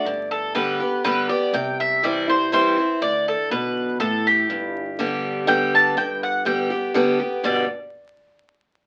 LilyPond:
<<
  \new Staff \with { instrumentName = "Mandolin" } { \time 3/4 \key g \major \tempo 4 = 122 d''8 a'8 b'4 b'8 d''8 | g''8 e''8 d''8 c''8 c''4 | d''8 a'8 b'4 a'8 g'8~ | g'2 g''8 a''8 |
g''8 fis''8 g''4 r4 | d''8 r2 r8 | }
  \new Staff \with { instrumentName = "Steel-string acoustic guitar" } { \time 3/4 \key g \major << { r4 <d g b g'>8 <b g'>8 <d g b g'>8 <b g'>8 | r4 <e g c' e'>8 <c' e'>8 <e g c' e'>8 <c' e'>8 | r2. | r4 <d g b g'>4 <d g b g'>4 |
r4 <d g b g'>8 <b g'>8 <d g b g'>8 <b g'>8 | <g, b, d g b g'>8 r2 r8 | } \\ { g,2 r4 | c2 r4 | d4 b,4 a,4 | g,2 r4 |
g,2 r4 | r2. | } >> }
  \new Staff \with { instrumentName = "Upright bass" } { \clef bass \time 3/4 \key g \major g,,2. | c,2. | d,4 b,,4 a,,4 | g,,2. |
g,,2. | g,,8 r2 r8 | }
>>